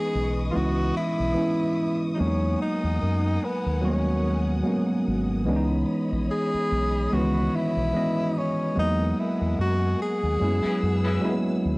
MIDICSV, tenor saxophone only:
0, 0, Header, 1, 2, 480
1, 0, Start_track
1, 0, Tempo, 821918
1, 1275, Time_signature, 4, 2, 24, 8
1, 6879, End_track
2, 0, Start_track
2, 0, Title_t, "Tenor saxophone"
2, 0, Program_c, 0, 66
2, 0, Note_on_c, 0, 68, 103
2, 262, Note_off_c, 0, 68, 0
2, 298, Note_on_c, 0, 65, 70
2, 331, Note_on_c, 0, 66, 92
2, 340, Note_off_c, 0, 65, 0
2, 563, Note_off_c, 0, 66, 0
2, 566, Note_on_c, 0, 64, 103
2, 1221, Note_off_c, 0, 64, 0
2, 1253, Note_on_c, 0, 63, 62
2, 1286, Note_on_c, 0, 61, 91
2, 1295, Note_off_c, 0, 63, 0
2, 1520, Note_off_c, 0, 61, 0
2, 1529, Note_on_c, 0, 63, 87
2, 2012, Note_on_c, 0, 59, 82
2, 2021, Note_off_c, 0, 63, 0
2, 2244, Note_off_c, 0, 59, 0
2, 2256, Note_on_c, 0, 61, 69
2, 2702, Note_off_c, 0, 61, 0
2, 3686, Note_on_c, 0, 68, 115
2, 4169, Note_on_c, 0, 66, 97
2, 4178, Note_off_c, 0, 68, 0
2, 4413, Note_on_c, 0, 64, 106
2, 4422, Note_off_c, 0, 66, 0
2, 4894, Note_on_c, 0, 61, 85
2, 4902, Note_off_c, 0, 64, 0
2, 5124, Note_off_c, 0, 61, 0
2, 5134, Note_on_c, 0, 63, 102
2, 5372, Note_on_c, 0, 64, 82
2, 5381, Note_off_c, 0, 63, 0
2, 5604, Note_off_c, 0, 64, 0
2, 5612, Note_on_c, 0, 66, 86
2, 5828, Note_off_c, 0, 66, 0
2, 5852, Note_on_c, 0, 68, 97
2, 6780, Note_off_c, 0, 68, 0
2, 6879, End_track
0, 0, End_of_file